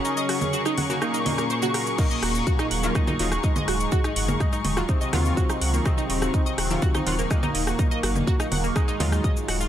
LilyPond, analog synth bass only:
\new Staff \with { instrumentName = "Analog synth bass" } { \clef bass \time 4/4 \key ees \dorian \tempo 4 = 124 r1 | r8 ees,,8 r8 ees,,8 r8 ees,,8 r8 ees,,8 | r8 ges,,8 r8 ees,,8 r8 ees,8 r8 des,8 | r8 ees,,8 r8 ees,,8 r8 ees,,8 r8 ees,,8 |
r8 ges,,8 r8 ees,,8 r8 ees,8 r8 ees,,8 | }